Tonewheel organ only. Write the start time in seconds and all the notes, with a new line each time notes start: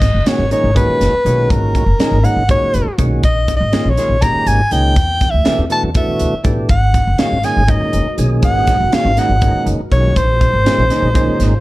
0.26 A#2 D#3 G#3 C#4 F#4
0.51 A#2 D#3 G#3 C#4 D#4
0.74 A#2 D#3 G#3 C#4 F#4
1.24 A#2 D#3 G#3 C#4 F#4
1.99 A#2 D#3 G#3 C#4 D#4
2.23 A#2 D#3 G#3 C#4 D#4
2.48 A#2 D#3 G#3 C#4 F#4
2.98 A#2 D#3 G#3 C#4 F#4
3.72 A#2 D#3 G#3 C#4 F4
3.97 A#2 D#3 G#3 C#4 F4
4.21 A#2 D#3 G#3 C#4 G4
4.71 A#2 D#3 G#3 C#4 D#4
5.44 B2 E3 A3 D4 G4
5.70 B2 E3 A3 D4 F#4
5.95 B2 E3 A3 D4 F#4
6.43 B2 E3 A3 D4 G4
7.18 A#2 D#3 G#3 C#4 F#4
7.43 A#2 D#3 G#3 C#4 G#4
7.67 A#2 D#3 G#3 C#4 D#4
8.17 A#2 D#3 G#3 C#4 G#4
8.92 A#2 D#3 G#3 C#4 F#4
9.16 A#2 D#3 G#3 C#4 D#4
9.41 A#2 D#3 G#3 C#4 D#4
9.91 A#2 D#3 G#3 C#4 F#4
10.65 A#2 D#3 G#3 C#4 F4
10.89 A#2 D#3 G#3 C#4 D#4
11.13 A#2 D#3 G#3 C#4 D#4